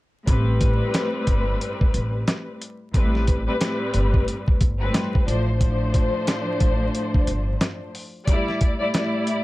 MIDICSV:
0, 0, Header, 1, 4, 480
1, 0, Start_track
1, 0, Key_signature, 0, "minor"
1, 0, Tempo, 666667
1, 197, Time_signature, 4, 2, 24, 8
1, 6796, End_track
2, 0, Start_track
2, 0, Title_t, "String section"
2, 0, Program_c, 0, 48
2, 193, Note_on_c, 0, 45, 97
2, 194, Note_on_c, 0, 55, 91
2, 196, Note_on_c, 0, 60, 86
2, 198, Note_on_c, 0, 71, 105
2, 1856, Note_off_c, 0, 45, 0
2, 1857, Note_off_c, 0, 55, 0
2, 1858, Note_off_c, 0, 60, 0
2, 1859, Note_off_c, 0, 71, 0
2, 2120, Note_on_c, 0, 45, 99
2, 2122, Note_on_c, 0, 55, 85
2, 2123, Note_on_c, 0, 60, 87
2, 2125, Note_on_c, 0, 71, 103
2, 2470, Note_off_c, 0, 45, 0
2, 2471, Note_off_c, 0, 55, 0
2, 2472, Note_off_c, 0, 60, 0
2, 2473, Note_off_c, 0, 71, 0
2, 2500, Note_on_c, 0, 45, 97
2, 2503, Note_on_c, 0, 55, 84
2, 2504, Note_on_c, 0, 60, 79
2, 2505, Note_on_c, 0, 71, 107
2, 2578, Note_off_c, 0, 45, 0
2, 2579, Note_off_c, 0, 55, 0
2, 2581, Note_off_c, 0, 60, 0
2, 2583, Note_off_c, 0, 71, 0
2, 2586, Note_on_c, 0, 45, 96
2, 2588, Note_on_c, 0, 55, 92
2, 2590, Note_on_c, 0, 60, 94
2, 2591, Note_on_c, 0, 71, 107
2, 3267, Note_off_c, 0, 45, 0
2, 3268, Note_off_c, 0, 55, 0
2, 3269, Note_off_c, 0, 60, 0
2, 3270, Note_off_c, 0, 71, 0
2, 3462, Note_on_c, 0, 45, 90
2, 3463, Note_on_c, 0, 55, 90
2, 3465, Note_on_c, 0, 60, 86
2, 3467, Note_on_c, 0, 71, 102
2, 3781, Note_off_c, 0, 45, 0
2, 3790, Note_on_c, 0, 45, 94
2, 3792, Note_on_c, 0, 53, 89
2, 3794, Note_on_c, 0, 62, 78
2, 3795, Note_on_c, 0, 72, 107
2, 3797, Note_off_c, 0, 55, 0
2, 3798, Note_off_c, 0, 60, 0
2, 3799, Note_off_c, 0, 71, 0
2, 4019, Note_off_c, 0, 45, 0
2, 4020, Note_off_c, 0, 53, 0
2, 4021, Note_off_c, 0, 62, 0
2, 4021, Note_off_c, 0, 72, 0
2, 4039, Note_on_c, 0, 45, 106
2, 4041, Note_on_c, 0, 53, 92
2, 4043, Note_on_c, 0, 62, 92
2, 4044, Note_on_c, 0, 72, 112
2, 5700, Note_off_c, 0, 45, 0
2, 5701, Note_off_c, 0, 53, 0
2, 5701, Note_off_c, 0, 62, 0
2, 5702, Note_off_c, 0, 72, 0
2, 5956, Note_on_c, 0, 45, 90
2, 5957, Note_on_c, 0, 55, 91
2, 5959, Note_on_c, 0, 64, 94
2, 5961, Note_on_c, 0, 74, 105
2, 6308, Note_off_c, 0, 45, 0
2, 6309, Note_off_c, 0, 55, 0
2, 6310, Note_off_c, 0, 64, 0
2, 6311, Note_off_c, 0, 74, 0
2, 6338, Note_on_c, 0, 45, 88
2, 6339, Note_on_c, 0, 55, 89
2, 6341, Note_on_c, 0, 64, 89
2, 6342, Note_on_c, 0, 74, 106
2, 6428, Note_off_c, 0, 45, 0
2, 6429, Note_off_c, 0, 55, 0
2, 6431, Note_off_c, 0, 64, 0
2, 6433, Note_off_c, 0, 74, 0
2, 6436, Note_on_c, 0, 45, 99
2, 6438, Note_on_c, 0, 55, 81
2, 6440, Note_on_c, 0, 64, 96
2, 6442, Note_on_c, 0, 74, 102
2, 6796, Note_off_c, 0, 45, 0
2, 6796, Note_off_c, 0, 55, 0
2, 6796, Note_off_c, 0, 64, 0
2, 6796, Note_off_c, 0, 74, 0
2, 6796, End_track
3, 0, Start_track
3, 0, Title_t, "Upright bass"
3, 0, Program_c, 1, 32
3, 199, Note_on_c, 1, 33, 100
3, 573, Note_off_c, 1, 33, 0
3, 918, Note_on_c, 1, 31, 82
3, 1105, Note_off_c, 1, 31, 0
3, 1400, Note_on_c, 1, 33, 86
3, 1586, Note_off_c, 1, 33, 0
3, 2119, Note_on_c, 1, 33, 102
3, 2493, Note_off_c, 1, 33, 0
3, 2840, Note_on_c, 1, 31, 88
3, 3026, Note_off_c, 1, 31, 0
3, 3320, Note_on_c, 1, 31, 91
3, 3506, Note_off_c, 1, 31, 0
3, 3800, Note_on_c, 1, 33, 94
3, 4361, Note_off_c, 1, 33, 0
3, 4758, Note_on_c, 1, 33, 90
3, 4945, Note_off_c, 1, 33, 0
3, 5240, Note_on_c, 1, 31, 94
3, 5426, Note_off_c, 1, 31, 0
3, 6796, End_track
4, 0, Start_track
4, 0, Title_t, "Drums"
4, 198, Note_on_c, 9, 36, 114
4, 198, Note_on_c, 9, 42, 95
4, 270, Note_off_c, 9, 36, 0
4, 270, Note_off_c, 9, 42, 0
4, 437, Note_on_c, 9, 42, 78
4, 441, Note_on_c, 9, 36, 91
4, 509, Note_off_c, 9, 42, 0
4, 513, Note_off_c, 9, 36, 0
4, 676, Note_on_c, 9, 42, 104
4, 681, Note_on_c, 9, 38, 119
4, 748, Note_off_c, 9, 42, 0
4, 753, Note_off_c, 9, 38, 0
4, 914, Note_on_c, 9, 42, 78
4, 917, Note_on_c, 9, 36, 93
4, 986, Note_off_c, 9, 42, 0
4, 989, Note_off_c, 9, 36, 0
4, 1161, Note_on_c, 9, 42, 84
4, 1233, Note_off_c, 9, 42, 0
4, 1304, Note_on_c, 9, 36, 92
4, 1376, Note_off_c, 9, 36, 0
4, 1397, Note_on_c, 9, 42, 81
4, 1469, Note_off_c, 9, 42, 0
4, 1639, Note_on_c, 9, 42, 94
4, 1640, Note_on_c, 9, 38, 119
4, 1711, Note_off_c, 9, 42, 0
4, 1712, Note_off_c, 9, 38, 0
4, 1883, Note_on_c, 9, 42, 71
4, 1955, Note_off_c, 9, 42, 0
4, 2118, Note_on_c, 9, 36, 114
4, 2119, Note_on_c, 9, 42, 91
4, 2190, Note_off_c, 9, 36, 0
4, 2191, Note_off_c, 9, 42, 0
4, 2269, Note_on_c, 9, 38, 38
4, 2341, Note_off_c, 9, 38, 0
4, 2357, Note_on_c, 9, 42, 80
4, 2361, Note_on_c, 9, 36, 88
4, 2429, Note_off_c, 9, 42, 0
4, 2433, Note_off_c, 9, 36, 0
4, 2597, Note_on_c, 9, 42, 105
4, 2602, Note_on_c, 9, 38, 121
4, 2669, Note_off_c, 9, 42, 0
4, 2674, Note_off_c, 9, 38, 0
4, 2835, Note_on_c, 9, 42, 77
4, 2907, Note_off_c, 9, 42, 0
4, 2980, Note_on_c, 9, 36, 95
4, 3052, Note_off_c, 9, 36, 0
4, 3081, Note_on_c, 9, 42, 88
4, 3153, Note_off_c, 9, 42, 0
4, 3224, Note_on_c, 9, 36, 93
4, 3296, Note_off_c, 9, 36, 0
4, 3317, Note_on_c, 9, 42, 79
4, 3319, Note_on_c, 9, 36, 91
4, 3389, Note_off_c, 9, 42, 0
4, 3391, Note_off_c, 9, 36, 0
4, 3558, Note_on_c, 9, 42, 95
4, 3560, Note_on_c, 9, 38, 122
4, 3630, Note_off_c, 9, 42, 0
4, 3632, Note_off_c, 9, 38, 0
4, 3709, Note_on_c, 9, 36, 88
4, 3781, Note_off_c, 9, 36, 0
4, 3802, Note_on_c, 9, 42, 71
4, 3874, Note_off_c, 9, 42, 0
4, 4037, Note_on_c, 9, 42, 92
4, 4038, Note_on_c, 9, 36, 110
4, 4109, Note_off_c, 9, 42, 0
4, 4110, Note_off_c, 9, 36, 0
4, 4277, Note_on_c, 9, 42, 79
4, 4281, Note_on_c, 9, 36, 91
4, 4349, Note_off_c, 9, 42, 0
4, 4353, Note_off_c, 9, 36, 0
4, 4516, Note_on_c, 9, 42, 105
4, 4521, Note_on_c, 9, 38, 114
4, 4588, Note_off_c, 9, 42, 0
4, 4593, Note_off_c, 9, 38, 0
4, 4754, Note_on_c, 9, 42, 78
4, 4757, Note_on_c, 9, 36, 90
4, 4826, Note_off_c, 9, 42, 0
4, 4829, Note_off_c, 9, 36, 0
4, 5001, Note_on_c, 9, 42, 86
4, 5073, Note_off_c, 9, 42, 0
4, 5144, Note_on_c, 9, 36, 87
4, 5216, Note_off_c, 9, 36, 0
4, 5237, Note_on_c, 9, 42, 79
4, 5309, Note_off_c, 9, 42, 0
4, 5478, Note_on_c, 9, 42, 96
4, 5480, Note_on_c, 9, 38, 117
4, 5550, Note_off_c, 9, 42, 0
4, 5552, Note_off_c, 9, 38, 0
4, 5722, Note_on_c, 9, 46, 51
4, 5794, Note_off_c, 9, 46, 0
4, 5958, Note_on_c, 9, 36, 113
4, 5958, Note_on_c, 9, 42, 93
4, 6030, Note_off_c, 9, 36, 0
4, 6030, Note_off_c, 9, 42, 0
4, 6108, Note_on_c, 9, 38, 37
4, 6180, Note_off_c, 9, 38, 0
4, 6197, Note_on_c, 9, 42, 80
4, 6201, Note_on_c, 9, 36, 94
4, 6269, Note_off_c, 9, 42, 0
4, 6273, Note_off_c, 9, 36, 0
4, 6436, Note_on_c, 9, 42, 104
4, 6441, Note_on_c, 9, 38, 118
4, 6508, Note_off_c, 9, 42, 0
4, 6513, Note_off_c, 9, 38, 0
4, 6674, Note_on_c, 9, 42, 77
4, 6746, Note_off_c, 9, 42, 0
4, 6796, End_track
0, 0, End_of_file